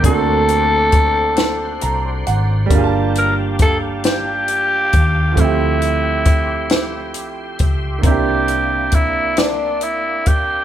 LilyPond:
<<
  \new Staff \with { instrumentName = "Tonewheel organ" } { \time 6/8 \key d \minor \tempo 4. = 45 << { c'''2. | g''2. | c'''2.~ | c'''2. | } \\ { <c'' d'' fis''>2. | <g' f'' a''>2. | <g' e'' g''>2. | <bes d''>2. | } >> }
  \new Staff \with { instrumentName = "Tenor saxophone" } { \time 6/8 \key d \minor a'2~ a'8 r8 | r8 bes'8 a'8 g'4. | e'2~ e'8 r8 | g'4 e'8 d'8 e'8 g'8 | }
  \new Staff \with { instrumentName = "Grand piano" } { \time 6/8 \key d \minor << { r2 bes''8 fis''8 | r2. | r2. | r2. | } \\ { <a bes c' d' fis'>2. | <g bes d' f' gis' a''>2. | <f a c' e' g'>2. | <ees bes c' d' e' g'>2. | } >> }
  \new Staff \with { instrumentName = "Fingered electric bass" } { \clef bass \time 6/8 \key d \minor d,2 c,8 gis,,8 | g,,2~ g,,8 ees,8 | d,2 c,8 cis,8 | c,2~ c,8 ees,8 | }
  \new DrumStaff \with { instrumentName = "Drums" } \drummode { \time 6/8 <hh bd>8 hh8 <hh bd>8 <hh sn>8 hh8 hh8 | <hh bd>8 hh8 <hh bd>8 <hh sn>8 hh8 <hh bd>8 | <hh bd>8 hh8 <hh bd>8 <hh sn>8 hh8 <hh bd>8 | <hh bd>8 hh8 <hh bd>8 <hh sn>8 hh8 <hh bd>8 | }
>>